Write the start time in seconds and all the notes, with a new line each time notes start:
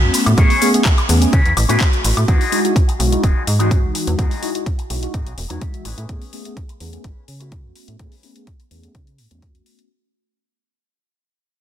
Already playing: A3 B3 C#4 F#4
0.03 E2
0.13 muted clean electric guitar stroke, open hi-hat, cabasa
0.26 A2, closed hi-hat, cabasa, high woodblock
0.37 A2 A3 B3 C#4 G#4 C#5, kick, closed hi-hat, cabasa
0.50 open hi-hat
0.61 A3 B3 C#4 G#4, open hi-hat, cabasa
0.74 A3 B3 C#4 G#4, closed hi-hat, cabasa
0.85 kick, clap, closed hi-hat, cabasa
0.97 muted clean electric guitar stroke, closed hi-hat, high woodblock
1.09 E2 A3 B3 C#4 G#4, muted clean electric guitar stroke, open hi-hat, cabasa
1.21 A3 B3 C#4 G#4, closed hi-hat, cabasa
1.32 C#3 C#4 G#4 B4, kick, closed hi-hat, cabasa
1.45 E2, closed hi-hat
1.57 A1, open hi-hat, cabasa, high woodblock
1.68 A2 A3 B3 C#4 F#4 G#4 B4, closed hi-hat, cabasa
1.80 kick, clap, closed hi-hat
1.93 closed hi-hat
2.04 A1, muted clean electric guitar stroke, open hi-hat, cabasa
2.17 A2, closed hi-hat, cabasa, high woodblock
2.28 E2 G#3 D#4 E4 F#4 G#4, kick, closed hi-hat
2.41 open hi-hat
2.52 G#3 D#4 E4 F#4, open hi-hat
2.64 G#3 D#4 E4 F#4, closed hi-hat
2.76 kick, closed hi-hat
2.88 muted clean electric guitar stroke, closed hi-hat
2.99 B1 G#3 D#4 E4 F#4, muted clean electric guitar stroke, open hi-hat
3.12 G#3 D#4 E4 F#4, closed hi-hat
3.23 E1 D#4 F#4 G#4, kick, closed hi-hat
3.47 G#2, open hi-hat
3.59 E3 G#3 D#4 F#4 G#4, closed hi-hat
3.71 kick, closed hi-hat
3.84 B1
3.94 muted clean electric guitar stroke, open hi-hat
4.07 E2, closed hi-hat
4.18 E2 G#3 D#4 E4 F#4 G#4, kick, closed hi-hat
4.31 open hi-hat
4.42 G#3 D#4 E4 F#4, open hi-hat
4.55 G#3 D#4 E4 F#4, closed hi-hat
4.66 kick, closed hi-hat
4.78 muted clean electric guitar stroke, closed hi-hat
4.90 B1 G#3 D#4 E4 F#4, muted clean electric guitar stroke, open hi-hat
5.03 G#3 D#4 E4 F#4, closed hi-hat
5.13 G#2 D#4 F#4 G#4, kick, closed hi-hat
5.26 B1, closed hi-hat
5.38 E1, open hi-hat
5.50 E2 E3 G#3 D#4 F#4 G#4, closed hi-hat
5.61 E5, kick, closed hi-hat
5.74 closed hi-hat
5.85 A1 C#4 G#4 B4 G#5, open hi-hat
5.98 A2, closed hi-hat
6.09 A2 A3 B3 C#4 G#4, kick, closed hi-hat
6.22 open hi-hat
6.33 A3 B3 C#4 G#4, open hi-hat
6.45 A3 B3 C#4 G#4, closed hi-hat
6.57 kick, closed hi-hat
6.69 muted clean electric guitar stroke, closed hi-hat
6.80 E2 A3 B3 C#4 G#4, muted clean electric guitar stroke, open hi-hat
6.93 A3 B3 C#4 G#4, closed hi-hat
7.04 A1 C#4 G#4 B4, kick, closed hi-hat
7.28 C#3, open hi-hat
7.40 A3 B3 C#4 F#4 G#4 B4, closed hi-hat
7.52 kick, closed hi-hat
7.64 E2
7.75 muted clean electric guitar stroke, open hi-hat
7.88 A2, closed hi-hat
7.99 A2 A3 B3 C#4 G#4 B4, kick, closed hi-hat
8.12 open hi-hat
8.23 A3 B3 C#4 G#4, open hi-hat
8.36 A3 B3 C#4 G#4, closed hi-hat
8.47 kick, closed hi-hat
8.59 muted clean electric guitar stroke, closed hi-hat
8.70 E2 A3 B3 C#4 G#4, muted clean electric guitar stroke, open hi-hat
8.83 A3 B3 C#4 G#4, closed hi-hat
8.95 C#3 B4, kick, closed hi-hat
9.07 closed hi-hat
9.18 A2, open hi-hat
9.31 E2 A3 B3 C#4 F#4 G#4 B4, closed hi-hat
9.42 kick, closed hi-hat
9.55 closed hi-hat
9.66 muted clean electric guitar stroke, open hi-hat
9.79 closed hi-hat